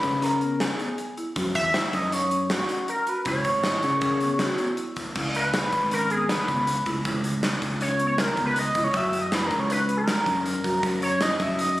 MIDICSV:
0, 0, Header, 1, 6, 480
1, 0, Start_track
1, 0, Tempo, 379027
1, 1722, Time_signature, 5, 2, 24, 8
1, 14944, End_track
2, 0, Start_track
2, 0, Title_t, "Analog synth lead"
2, 0, Program_c, 0, 81
2, 0, Note_on_c, 0, 71, 95
2, 296, Note_on_c, 0, 70, 86
2, 315, Note_off_c, 0, 71, 0
2, 769, Note_on_c, 0, 68, 77
2, 788, Note_off_c, 0, 70, 0
2, 1246, Note_off_c, 0, 68, 0
2, 1965, Note_on_c, 0, 76, 108
2, 2462, Note_on_c, 0, 75, 96
2, 2481, Note_off_c, 0, 76, 0
2, 2699, Note_on_c, 0, 73, 85
2, 2718, Note_off_c, 0, 75, 0
2, 3174, Note_off_c, 0, 73, 0
2, 3186, Note_on_c, 0, 66, 89
2, 3625, Note_off_c, 0, 66, 0
2, 3662, Note_on_c, 0, 70, 89
2, 3910, Note_on_c, 0, 71, 83
2, 3929, Note_off_c, 0, 70, 0
2, 4135, Note_off_c, 0, 71, 0
2, 4143, Note_on_c, 0, 73, 102
2, 6009, Note_off_c, 0, 73, 0
2, 6787, Note_on_c, 0, 71, 94
2, 7451, Note_off_c, 0, 71, 0
2, 7511, Note_on_c, 0, 70, 86
2, 7727, Note_off_c, 0, 70, 0
2, 7737, Note_on_c, 0, 68, 88
2, 7972, Note_on_c, 0, 71, 86
2, 7991, Note_off_c, 0, 68, 0
2, 8694, Note_off_c, 0, 71, 0
2, 9899, Note_on_c, 0, 73, 85
2, 10194, Note_off_c, 0, 73, 0
2, 10214, Note_on_c, 0, 73, 91
2, 10385, Note_on_c, 0, 70, 91
2, 10404, Note_off_c, 0, 73, 0
2, 10699, Note_off_c, 0, 70, 0
2, 10708, Note_on_c, 0, 71, 89
2, 10875, Note_on_c, 0, 75, 99
2, 10894, Note_off_c, 0, 71, 0
2, 11193, Note_on_c, 0, 73, 94
2, 11212, Note_off_c, 0, 75, 0
2, 11351, Note_on_c, 0, 76, 113
2, 11370, Note_off_c, 0, 73, 0
2, 11668, Note_on_c, 0, 75, 97
2, 11687, Note_off_c, 0, 76, 0
2, 11834, Note_on_c, 0, 71, 88
2, 11853, Note_off_c, 0, 75, 0
2, 11985, Note_on_c, 0, 70, 84
2, 12004, Note_off_c, 0, 71, 0
2, 12151, Note_on_c, 0, 73, 72
2, 12170, Note_off_c, 0, 70, 0
2, 12295, Note_off_c, 0, 73, 0
2, 12303, Note_on_c, 0, 71, 82
2, 12593, Note_off_c, 0, 71, 0
2, 12628, Note_on_c, 0, 70, 90
2, 13763, Note_off_c, 0, 70, 0
2, 13966, Note_on_c, 0, 73, 83
2, 14212, Note_on_c, 0, 75, 93
2, 14231, Note_off_c, 0, 73, 0
2, 14461, Note_on_c, 0, 76, 83
2, 14480, Note_off_c, 0, 75, 0
2, 14701, Note_on_c, 0, 75, 92
2, 14720, Note_off_c, 0, 76, 0
2, 14944, Note_off_c, 0, 75, 0
2, 14944, End_track
3, 0, Start_track
3, 0, Title_t, "Vibraphone"
3, 0, Program_c, 1, 11
3, 4610, Note_on_c, 1, 64, 75
3, 4992, Note_on_c, 1, 70, 61
3, 5014, Note_off_c, 1, 64, 0
3, 5081, Note_on_c, 1, 68, 88
3, 5086, Note_off_c, 1, 70, 0
3, 5533, Note_off_c, 1, 68, 0
3, 5565, Note_on_c, 1, 66, 85
3, 5904, Note_off_c, 1, 66, 0
3, 5935, Note_on_c, 1, 64, 66
3, 6493, Note_off_c, 1, 64, 0
3, 14944, End_track
4, 0, Start_track
4, 0, Title_t, "Marimba"
4, 0, Program_c, 2, 12
4, 0, Note_on_c, 2, 63, 79
4, 219, Note_off_c, 2, 63, 0
4, 284, Note_on_c, 2, 61, 75
4, 491, Note_off_c, 2, 61, 0
4, 525, Note_on_c, 2, 59, 61
4, 942, Note_off_c, 2, 59, 0
4, 1008, Note_on_c, 2, 59, 63
4, 1424, Note_off_c, 2, 59, 0
4, 1490, Note_on_c, 2, 64, 76
4, 1696, Note_off_c, 2, 64, 0
4, 1732, Note_on_c, 2, 66, 72
4, 2147, Note_off_c, 2, 66, 0
4, 2205, Note_on_c, 2, 64, 78
4, 2624, Note_off_c, 2, 64, 0
4, 2681, Note_on_c, 2, 63, 71
4, 2893, Note_off_c, 2, 63, 0
4, 2925, Note_on_c, 2, 61, 65
4, 3345, Note_off_c, 2, 61, 0
4, 3404, Note_on_c, 2, 61, 65
4, 3825, Note_off_c, 2, 61, 0
4, 3889, Note_on_c, 2, 66, 69
4, 4099, Note_off_c, 2, 66, 0
4, 4126, Note_on_c, 2, 64, 75
4, 4547, Note_off_c, 2, 64, 0
4, 4622, Note_on_c, 2, 75, 74
4, 5036, Note_off_c, 2, 75, 0
4, 5095, Note_on_c, 2, 61, 77
4, 5303, Note_off_c, 2, 61, 0
4, 5338, Note_on_c, 2, 59, 62
4, 5754, Note_off_c, 2, 59, 0
4, 5808, Note_on_c, 2, 59, 70
4, 6229, Note_off_c, 2, 59, 0
4, 6296, Note_on_c, 2, 64, 70
4, 6504, Note_off_c, 2, 64, 0
4, 6539, Note_on_c, 2, 64, 74
4, 6956, Note_off_c, 2, 64, 0
4, 7023, Note_on_c, 2, 63, 77
4, 7438, Note_off_c, 2, 63, 0
4, 7503, Note_on_c, 2, 61, 72
4, 7709, Note_off_c, 2, 61, 0
4, 7746, Note_on_c, 2, 59, 59
4, 8160, Note_off_c, 2, 59, 0
4, 8226, Note_on_c, 2, 59, 62
4, 8640, Note_off_c, 2, 59, 0
4, 8700, Note_on_c, 2, 64, 77
4, 8907, Note_off_c, 2, 64, 0
4, 8940, Note_on_c, 2, 64, 75
4, 9356, Note_off_c, 2, 64, 0
4, 9424, Note_on_c, 2, 63, 74
4, 9838, Note_off_c, 2, 63, 0
4, 9899, Note_on_c, 2, 61, 72
4, 10105, Note_off_c, 2, 61, 0
4, 10139, Note_on_c, 2, 59, 62
4, 10555, Note_off_c, 2, 59, 0
4, 10611, Note_on_c, 2, 59, 75
4, 11029, Note_off_c, 2, 59, 0
4, 11091, Note_on_c, 2, 64, 80
4, 11300, Note_off_c, 2, 64, 0
4, 11333, Note_on_c, 2, 66, 78
4, 11750, Note_off_c, 2, 66, 0
4, 11812, Note_on_c, 2, 64, 87
4, 12228, Note_off_c, 2, 64, 0
4, 12282, Note_on_c, 2, 63, 78
4, 12494, Note_off_c, 2, 63, 0
4, 12519, Note_on_c, 2, 61, 65
4, 12940, Note_off_c, 2, 61, 0
4, 12999, Note_on_c, 2, 61, 71
4, 13419, Note_off_c, 2, 61, 0
4, 13483, Note_on_c, 2, 66, 74
4, 13692, Note_off_c, 2, 66, 0
4, 13724, Note_on_c, 2, 66, 80
4, 14141, Note_off_c, 2, 66, 0
4, 14196, Note_on_c, 2, 64, 78
4, 14615, Note_off_c, 2, 64, 0
4, 14680, Note_on_c, 2, 63, 74
4, 14888, Note_off_c, 2, 63, 0
4, 14944, End_track
5, 0, Start_track
5, 0, Title_t, "Fingered electric bass"
5, 0, Program_c, 3, 33
5, 43, Note_on_c, 3, 49, 87
5, 864, Note_off_c, 3, 49, 0
5, 1726, Note_on_c, 3, 42, 77
5, 1930, Note_off_c, 3, 42, 0
5, 1965, Note_on_c, 3, 40, 72
5, 2170, Note_off_c, 3, 40, 0
5, 2451, Note_on_c, 3, 42, 83
5, 3271, Note_off_c, 3, 42, 0
5, 4127, Note_on_c, 3, 37, 83
5, 4333, Note_off_c, 3, 37, 0
5, 4366, Note_on_c, 3, 32, 75
5, 4779, Note_off_c, 3, 32, 0
5, 4853, Note_on_c, 3, 49, 78
5, 5674, Note_off_c, 3, 49, 0
5, 6533, Note_on_c, 3, 37, 85
5, 7255, Note_off_c, 3, 37, 0
5, 7255, Note_on_c, 3, 32, 92
5, 8076, Note_off_c, 3, 32, 0
5, 8211, Note_on_c, 3, 37, 75
5, 8623, Note_off_c, 3, 37, 0
5, 8692, Note_on_c, 3, 37, 81
5, 8898, Note_off_c, 3, 37, 0
5, 8935, Note_on_c, 3, 37, 76
5, 9550, Note_off_c, 3, 37, 0
5, 9652, Note_on_c, 3, 37, 90
5, 10472, Note_off_c, 3, 37, 0
5, 10609, Note_on_c, 3, 37, 89
5, 11020, Note_off_c, 3, 37, 0
5, 11088, Note_on_c, 3, 37, 82
5, 11294, Note_off_c, 3, 37, 0
5, 11326, Note_on_c, 3, 42, 90
5, 12041, Note_off_c, 3, 42, 0
5, 12041, Note_on_c, 3, 37, 91
5, 12863, Note_off_c, 3, 37, 0
5, 12997, Note_on_c, 3, 42, 78
5, 13410, Note_off_c, 3, 42, 0
5, 13477, Note_on_c, 3, 42, 90
5, 13685, Note_off_c, 3, 42, 0
5, 13721, Note_on_c, 3, 42, 82
5, 14335, Note_off_c, 3, 42, 0
5, 14434, Note_on_c, 3, 42, 98
5, 14944, Note_off_c, 3, 42, 0
5, 14944, End_track
6, 0, Start_track
6, 0, Title_t, "Drums"
6, 40, Note_on_c, 9, 36, 69
6, 40, Note_on_c, 9, 42, 48
6, 166, Note_off_c, 9, 36, 0
6, 166, Note_off_c, 9, 42, 0
6, 282, Note_on_c, 9, 38, 31
6, 282, Note_on_c, 9, 42, 74
6, 409, Note_off_c, 9, 38, 0
6, 409, Note_off_c, 9, 42, 0
6, 521, Note_on_c, 9, 42, 52
6, 648, Note_off_c, 9, 42, 0
6, 763, Note_on_c, 9, 38, 106
6, 763, Note_on_c, 9, 42, 70
6, 889, Note_off_c, 9, 38, 0
6, 889, Note_off_c, 9, 42, 0
6, 1005, Note_on_c, 9, 42, 49
6, 1132, Note_off_c, 9, 42, 0
6, 1242, Note_on_c, 9, 42, 68
6, 1369, Note_off_c, 9, 42, 0
6, 1487, Note_on_c, 9, 42, 49
6, 1614, Note_off_c, 9, 42, 0
6, 1721, Note_on_c, 9, 42, 71
6, 1724, Note_on_c, 9, 36, 99
6, 1848, Note_off_c, 9, 42, 0
6, 1851, Note_off_c, 9, 36, 0
6, 1963, Note_on_c, 9, 42, 58
6, 1966, Note_on_c, 9, 36, 71
6, 2090, Note_off_c, 9, 42, 0
6, 2092, Note_off_c, 9, 36, 0
6, 2205, Note_on_c, 9, 38, 96
6, 2205, Note_on_c, 9, 42, 70
6, 2332, Note_off_c, 9, 38, 0
6, 2332, Note_off_c, 9, 42, 0
6, 2446, Note_on_c, 9, 38, 29
6, 2446, Note_on_c, 9, 42, 51
6, 2447, Note_on_c, 9, 36, 58
6, 2572, Note_off_c, 9, 38, 0
6, 2572, Note_off_c, 9, 42, 0
6, 2574, Note_off_c, 9, 36, 0
6, 2689, Note_on_c, 9, 42, 80
6, 2816, Note_off_c, 9, 42, 0
6, 2926, Note_on_c, 9, 42, 63
6, 3053, Note_off_c, 9, 42, 0
6, 3165, Note_on_c, 9, 38, 100
6, 3165, Note_on_c, 9, 42, 72
6, 3291, Note_off_c, 9, 38, 0
6, 3291, Note_off_c, 9, 42, 0
6, 3403, Note_on_c, 9, 42, 54
6, 3529, Note_off_c, 9, 42, 0
6, 3648, Note_on_c, 9, 42, 74
6, 3775, Note_off_c, 9, 42, 0
6, 3885, Note_on_c, 9, 42, 58
6, 4012, Note_off_c, 9, 42, 0
6, 4118, Note_on_c, 9, 42, 65
6, 4125, Note_on_c, 9, 36, 91
6, 4245, Note_off_c, 9, 42, 0
6, 4252, Note_off_c, 9, 36, 0
6, 4364, Note_on_c, 9, 42, 53
6, 4366, Note_on_c, 9, 36, 65
6, 4490, Note_off_c, 9, 42, 0
6, 4493, Note_off_c, 9, 36, 0
6, 4604, Note_on_c, 9, 38, 98
6, 4604, Note_on_c, 9, 42, 70
6, 4731, Note_off_c, 9, 38, 0
6, 4731, Note_off_c, 9, 42, 0
6, 4843, Note_on_c, 9, 42, 45
6, 4970, Note_off_c, 9, 42, 0
6, 5081, Note_on_c, 9, 42, 66
6, 5087, Note_on_c, 9, 36, 104
6, 5208, Note_off_c, 9, 42, 0
6, 5214, Note_off_c, 9, 36, 0
6, 5325, Note_on_c, 9, 42, 52
6, 5451, Note_off_c, 9, 42, 0
6, 5561, Note_on_c, 9, 38, 97
6, 5561, Note_on_c, 9, 42, 72
6, 5687, Note_off_c, 9, 38, 0
6, 5687, Note_off_c, 9, 42, 0
6, 5801, Note_on_c, 9, 42, 54
6, 5928, Note_off_c, 9, 42, 0
6, 6043, Note_on_c, 9, 42, 71
6, 6170, Note_off_c, 9, 42, 0
6, 6283, Note_on_c, 9, 42, 56
6, 6289, Note_on_c, 9, 36, 70
6, 6410, Note_off_c, 9, 42, 0
6, 6416, Note_off_c, 9, 36, 0
6, 6526, Note_on_c, 9, 49, 83
6, 6531, Note_on_c, 9, 36, 91
6, 6653, Note_off_c, 9, 49, 0
6, 6657, Note_off_c, 9, 36, 0
6, 6771, Note_on_c, 9, 42, 53
6, 6898, Note_off_c, 9, 42, 0
6, 7011, Note_on_c, 9, 38, 105
6, 7011, Note_on_c, 9, 42, 79
6, 7138, Note_off_c, 9, 38, 0
6, 7138, Note_off_c, 9, 42, 0
6, 7248, Note_on_c, 9, 42, 55
6, 7252, Note_on_c, 9, 36, 60
6, 7375, Note_off_c, 9, 42, 0
6, 7378, Note_off_c, 9, 36, 0
6, 7489, Note_on_c, 9, 42, 82
6, 7615, Note_off_c, 9, 42, 0
6, 7727, Note_on_c, 9, 42, 55
6, 7854, Note_off_c, 9, 42, 0
6, 7970, Note_on_c, 9, 38, 100
6, 7970, Note_on_c, 9, 42, 76
6, 8097, Note_off_c, 9, 38, 0
6, 8097, Note_off_c, 9, 42, 0
6, 8208, Note_on_c, 9, 42, 57
6, 8212, Note_on_c, 9, 36, 71
6, 8335, Note_off_c, 9, 42, 0
6, 8338, Note_off_c, 9, 36, 0
6, 8450, Note_on_c, 9, 42, 74
6, 8577, Note_off_c, 9, 42, 0
6, 8686, Note_on_c, 9, 42, 52
6, 8691, Note_on_c, 9, 36, 70
6, 8812, Note_off_c, 9, 42, 0
6, 8817, Note_off_c, 9, 36, 0
6, 8928, Note_on_c, 9, 42, 65
6, 8931, Note_on_c, 9, 36, 91
6, 9054, Note_off_c, 9, 42, 0
6, 9058, Note_off_c, 9, 36, 0
6, 9168, Note_on_c, 9, 42, 52
6, 9295, Note_off_c, 9, 42, 0
6, 9409, Note_on_c, 9, 38, 102
6, 9409, Note_on_c, 9, 42, 77
6, 9535, Note_off_c, 9, 38, 0
6, 9535, Note_off_c, 9, 42, 0
6, 9649, Note_on_c, 9, 42, 53
6, 9650, Note_on_c, 9, 36, 63
6, 9776, Note_off_c, 9, 36, 0
6, 9776, Note_off_c, 9, 42, 0
6, 9887, Note_on_c, 9, 42, 72
6, 10014, Note_off_c, 9, 42, 0
6, 10123, Note_on_c, 9, 42, 59
6, 10250, Note_off_c, 9, 42, 0
6, 10363, Note_on_c, 9, 38, 108
6, 10363, Note_on_c, 9, 42, 76
6, 10489, Note_off_c, 9, 38, 0
6, 10489, Note_off_c, 9, 42, 0
6, 10600, Note_on_c, 9, 42, 54
6, 10604, Note_on_c, 9, 36, 66
6, 10726, Note_off_c, 9, 42, 0
6, 10731, Note_off_c, 9, 36, 0
6, 10841, Note_on_c, 9, 42, 79
6, 10967, Note_off_c, 9, 42, 0
6, 11077, Note_on_c, 9, 42, 61
6, 11083, Note_on_c, 9, 36, 75
6, 11204, Note_off_c, 9, 42, 0
6, 11210, Note_off_c, 9, 36, 0
6, 11317, Note_on_c, 9, 42, 80
6, 11322, Note_on_c, 9, 36, 103
6, 11444, Note_off_c, 9, 42, 0
6, 11448, Note_off_c, 9, 36, 0
6, 11563, Note_on_c, 9, 42, 56
6, 11689, Note_off_c, 9, 42, 0
6, 11803, Note_on_c, 9, 38, 101
6, 11803, Note_on_c, 9, 42, 78
6, 11929, Note_off_c, 9, 38, 0
6, 11929, Note_off_c, 9, 42, 0
6, 12040, Note_on_c, 9, 42, 51
6, 12041, Note_on_c, 9, 36, 69
6, 12166, Note_off_c, 9, 42, 0
6, 12168, Note_off_c, 9, 36, 0
6, 12284, Note_on_c, 9, 42, 81
6, 12411, Note_off_c, 9, 42, 0
6, 12523, Note_on_c, 9, 42, 60
6, 12649, Note_off_c, 9, 42, 0
6, 12760, Note_on_c, 9, 38, 101
6, 12760, Note_on_c, 9, 42, 78
6, 12887, Note_off_c, 9, 38, 0
6, 12887, Note_off_c, 9, 42, 0
6, 12997, Note_on_c, 9, 36, 68
6, 13000, Note_on_c, 9, 42, 58
6, 13124, Note_off_c, 9, 36, 0
6, 13126, Note_off_c, 9, 42, 0
6, 13241, Note_on_c, 9, 42, 71
6, 13368, Note_off_c, 9, 42, 0
6, 13479, Note_on_c, 9, 36, 69
6, 13482, Note_on_c, 9, 42, 55
6, 13606, Note_off_c, 9, 36, 0
6, 13609, Note_off_c, 9, 42, 0
6, 13717, Note_on_c, 9, 36, 100
6, 13718, Note_on_c, 9, 42, 75
6, 13844, Note_off_c, 9, 36, 0
6, 13845, Note_off_c, 9, 42, 0
6, 13956, Note_on_c, 9, 42, 58
6, 14083, Note_off_c, 9, 42, 0
6, 14192, Note_on_c, 9, 38, 107
6, 14192, Note_on_c, 9, 42, 78
6, 14319, Note_off_c, 9, 38, 0
6, 14319, Note_off_c, 9, 42, 0
6, 14433, Note_on_c, 9, 42, 57
6, 14435, Note_on_c, 9, 36, 71
6, 14560, Note_off_c, 9, 42, 0
6, 14562, Note_off_c, 9, 36, 0
6, 14675, Note_on_c, 9, 42, 81
6, 14802, Note_off_c, 9, 42, 0
6, 14944, End_track
0, 0, End_of_file